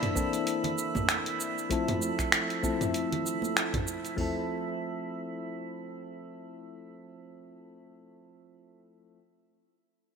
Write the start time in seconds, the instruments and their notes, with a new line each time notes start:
Already playing: synth keys E3 A#3 C4 D4 A4, synth texture E4 E5
0.03 mid tom, open hi-hat
0.15 synth keys E3 A#3 C4 D4 A4, kick, high conga, cabasa
0.33 open hi-hat, cabasa
0.47 open hi-hat, cabasa
0.64 open hi-hat, low conga
0.78 cabasa
0.95 kick, mid tom, high conga, cabasa
1.09 finger snap, open hi-hat, cabasa
1.26 open hi-hat
1.40 cabasa
1.58 cabasa
1.69 synth keys F3 A3 C4 E4 A4, kick, open hi-hat, cabasa
1.88 mid tom, open hi-hat, high conga
2.02 cabasa
2.19 finger snap, kick, open hi-hat, cabasa
2.32 finger snap, open hi-hat, cabasa
2.50 open hi-hat
2.63 synth keys F3 A3 C4 E4 A4, kick, high conga, cabasa
2.81 mid tom, open hi-hat, cabasa
2.94 open hi-hat, cabasa
3.12 open hi-hat, low conga
3.26 cabasa
3.42 high conga, cabasa
3.57 finger snap, open hi-hat, cabasa
3.74 kick, mid tom, open hi-hat
3.87 cabasa
4.05 open hi-hat, cabasa
4.16 synth keys F3 A3 C4 E4, kick, floor tom, open hi-hat
4.21 synth keys A4